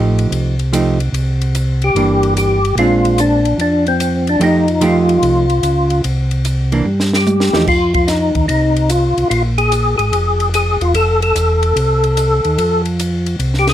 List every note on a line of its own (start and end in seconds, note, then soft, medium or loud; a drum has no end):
0.00 0.27 A1 medium
0.00 0.54 F3 soft
0.00 0.54 A3 soft
0.00 0.54 D#4 soft
0.00 0.55 G4 medium
0.19 ride soft
0.31 1.09 C2 medium
0.31 ride medium
0.59 ride soft
0.73 0.97 F3 medium
0.73 0.98 A3 medium
0.73 0.98 D#4 medium
0.73 0.98 G4 medium
0.73 hi-hat pedal medium
0.73 ride medium
1.00 ride soft
1.12 1.91 C2 medium
1.12 ride medium
1.41 ride soft
1.55 hi-hat pedal soft
1.55 ride medium
1.82 2.34 G4 medium
1.82 ride soft
1.95 2.73 G1 medium
1.95 2.59 E3 medium
1.95 2.59 A#3 medium
1.95 2.59 D4 medium
1.95 ride medium
2.23 ride soft
2.37 2.75 G4 medium
2.37 hi-hat pedal medium
2.37 ride medium
2.65 ride soft
2.76 3.54 A#1 medium
2.76 3.41 G#3 medium
2.76 3.41 C4 medium
2.76 3.41 D4 medium
2.76 3.20 F4 loud
2.76 ride medium
3.05 ride soft
3.18 3.57 D4 medium
3.18 hi-hat pedal medium
3.18 ride medium
3.45 ride soft
3.58 4.37 F2 medium
3.58 3.86 D4 medium
3.58 ride medium
3.86 4.29 C4 medium
3.86 ride soft
4.00 hi-hat pedal medium
4.00 ride medium
4.27 4.41 D4 medium
4.27 ride soft
4.39 5.18 F2 medium
4.39 4.66 F3 medium
4.39 4.65 A3 medium
4.39 4.66 D#4 medium
4.39 4.66 G4 medium
4.39 ride medium
4.44 4.84 D#4 medium
4.68 ride soft
4.81 5.44 F3 medium
4.81 5.45 A3 medium
4.81 5.45 D#4 medium
4.81 6.02 F4 medium
4.81 5.45 G4 medium
4.81 hi-hat pedal soft
4.81 ride medium
5.09 ride soft
5.22 5.61 C2 medium
5.22 ride medium
5.50 ride soft
5.63 6.01 C#2 medium
5.63 hi-hat pedal medium
5.63 ride medium
5.90 ride soft
6.04 6.82 C2 medium
6.04 ride medium
6.31 ride soft
6.45 hi-hat pedal soft
6.45 ride medium
6.72 6.85 E3 medium
6.72 6.85 A#3 medium
6.72 6.85 D4 medium
6.72 ride soft
6.86 7.50 G2 medium
7.00 snare soft
7.13 7.66 G4 medium
7.13 snare medium
7.26 hi-hat pedal medium
7.26 high tom medium
7.40 snare medium
7.53 7.67 E2 medium
7.53 7.67 F3 soft
7.53 7.67 A3 medium
7.53 7.67 D#4 medium
7.53 7.67 G4 medium
7.53 snare medium
7.67 8.32 F2 medium
7.67 7.93 F4 medium
7.67 kick medium
7.67 crash medium
7.94 8.09 F4 medium
7.94 kick medium
7.94 ride soft
8.07 8.46 D#4 medium
8.07 snare soft
8.07 hi-hat pedal medium
8.07 ride medium
8.35 8.48 D#2 medium
8.35 kick soft
8.35 ride soft
8.48 9.14 C2 medium
8.48 8.91 D#4 medium
8.48 ride medium
8.76 ride soft
8.89 9.28 F4 medium
8.89 hi-hat pedal medium
8.89 ride medium
9.18 9.25 C2 soft
9.18 ride soft
9.30 9.95 A#1 medium
9.30 9.42 F4 medium
9.30 ride medium
9.58 9.96 G#4 loud
9.58 ride soft
9.72 hi-hat pedal medium
9.72 ride medium
9.98 10.12 G#1 medium
9.98 10.49 G#4 medium
9.98 ride soft
10.12 10.77 F1 medium
10.12 ride medium
10.40 ride soft
10.54 10.82 G#4 medium
10.54 hi-hat pedal soft
10.54 ride medium
10.81 10.94 E1 medium
10.81 10.94 F4 medium
10.81 ride soft
10.94 11.33 F1 medium
10.94 11.20 A4 loud
10.94 ride medium
11.22 12.82 A4 medium
11.22 ride soft
11.35 11.74 E1 medium
11.35 hi-hat pedal medium
11.35 ride medium
11.63 ride soft
11.76 12.41 C2 medium
11.76 ride medium
12.04 ride soft
12.17 hi-hat pedal medium
12.17 ride medium
12.45 12.58 D#2 medium
12.45 ride soft
12.58 13.36 F2 medium
12.58 ride medium
12.85 ride soft
13.00 hi-hat pedal medium
13.00 ride medium
13.26 ride soft
13.39 13.74 C2 medium
13.39 ride medium
13.54 snare soft
13.59 13.68 G4 medium
13.67 13.74 G#4 medium
13.67 snare soft
13.67 ride soft